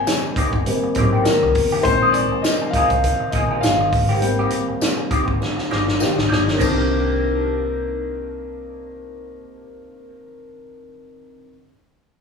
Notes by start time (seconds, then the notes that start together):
Already playing: G3 A#3 C4 D#5 G5 G#5
0.07 snare, closed hi-hat, tambourine, high conga
0.24 muted clean electric guitar stroke
0.36 D#3 A#3 C4 G4, muted fingered electric bass stroke, kick, closed hi-hat
0.53 G1, muted clean electric guitar stroke, kick
0.66 G3 A#3 C4, muted clean electric guitar stroke, closed hi-hat, muted conga
0.84 muted clean electric guitar stroke
0.95 G#1 D#3 A#3 C4, kick, closed hi-hat, muted conga, low conga
0.99 G4
1.13 D#3 A#3 C4 G4
1.24 A#4, muted clean electric guitar stroke, snare, closed hi-hat, tambourine, high conga
1.43 C2, muted clean electric guitar stroke
1.55 F1, kick, open hi-hat, high conga
1.72 D#3 A#3 C4 G4
1.83 A#1 D#3 G#3 C4 C5, muted clean electric guitar stroke, kick, closed hi-hat
2.02 F3 A#3 D#4 G#4
2.12 D5, muted clean electric guitar stroke, closed hi-hat, muted conga
2.32 muted clean electric guitar stroke, muted fingered electric bass stroke
2.42 D#5, snare, closed hi-hat, tambourine, high conga
2.62 muted clean electric guitar stroke
2.71 F5, muted fingered electric bass stroke, kick, closed hi-hat
2.75 F3 A#3 D#4 G#4
2.90 C2, muted clean electric guitar stroke, kick, closed hi-hat
3.04 muted clean electric guitar stroke, kick, closed hi-hat, muted conga
3.20 muted clean electric guitar stroke, muted fingered electric bass stroke
3.31 A#1 F3 A#3 D#5, kick, closed hi-hat, muted conga
3.35 D#4 G#4
3.51 F3 A#3 D#4 G#4
3.61 G1 F5, muted clean electric guitar stroke, snare, closed hi-hat, tambourine, high conga
3.81 muted clean electric guitar stroke
3.93 G#1, kick, open hi-hat, high conga
4.09 D#3 A#3 C4 G4
4.20 G3 A#3 C4 G5, muted clean electric guitar stroke, closed hi-hat, muted conga
4.39 D#3 A#3 C4 G4
4.50 muted clean electric guitar stroke, closed hi-hat, muted conga
4.68 muted clean electric guitar stroke, muted fingered electric bass stroke
4.81 snare, closed hi-hat, tambourine, high conga
4.98 muted clean electric guitar stroke
5.11 D#3 A#3 C4 G4, muted fingered electric bass stroke, kick, closed hi-hat
5.27 G#1, muted clean electric guitar stroke, kick
5.41 muted clean electric guitar stroke, snare, muted conga
5.56 muted clean electric guitar stroke, snare
5.71 G1 D#3 A#3 C4 G4, snare, muted conga
5.86 muted clean electric guitar stroke, snare
6.00 D#3 A#3 C4 G4, snare, tambourine, high conga
6.15 G#1, muted clean electric guitar stroke, snare
6.29 G1 D#3 A#3 C4 G4, snare, high conga
6.46 muted clean electric guitar stroke, snare
6.53 D#3
6.57 D#3 A#3 C4 D4, kick, tambourine, muted conga
6.61 C2 D4 G4, crash
6.67 A#4